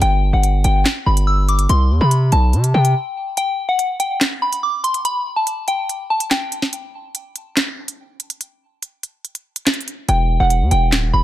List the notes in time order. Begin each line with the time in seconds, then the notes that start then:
0.02 G1 G5, closed hi-hat
0.33 G1 F#5
0.43 closed hi-hat
0.64 G1 G5, closed hi-hat
0.85 snare, clap, closed hi-hat
1.06 G1 B5
1.17 closed hi-hat
1.27 E6
1.49 D6, closed hi-hat
1.59 closed hi-hat
1.69 C2 C6, closed hi-hat
1.90 E2
2.01 C3 B5
2.11 closed hi-hat
2.32 B1 A5, closed hi-hat
2.53 C3, closed hi-hat
2.64 closed hi-hat
2.74 C3 G5
2.85 closed hi-hat
3.37 G5, closed hi-hat
3.69 F#5
3.79 closed hi-hat
4.00 G5, closed hi-hat
4.21 snare, clap, closed hi-hat
4.42 B5
4.53 closed hi-hat
4.63 D6
4.84 C6, closed hi-hat
4.94 closed hi-hat
5.05 B5, closed hi-hat
5.36 A5
5.47 closed hi-hat
5.68 G5, closed hi-hat
5.89 closed hi-hat
6.10 A5
6.20 closed hi-hat
6.31 G5, snare, clap, closed hi-hat
6.52 closed hi-hat
6.62 snare
6.73 closed hi-hat
7.15 closed hi-hat
7.36 closed hi-hat
7.57 snare, clap, closed hi-hat
7.88 closed hi-hat
8.20 closed hi-hat
8.30 closed hi-hat
8.41 closed hi-hat
8.83 closed hi-hat
9.03 closed hi-hat
9.25 closed hi-hat
9.35 closed hi-hat
9.56 closed hi-hat
9.67 snare, clap, closed hi-hat
9.74 closed hi-hat
9.81 closed hi-hat
9.88 closed hi-hat
10.09 E1 G5, closed hi-hat
10.40 E1 F#5
10.50 closed hi-hat
10.61 E2
10.71 E1 G5, closed hi-hat
10.92 D1, snare, clap, closed hi-hat
11.03 E1
11.13 E1 B5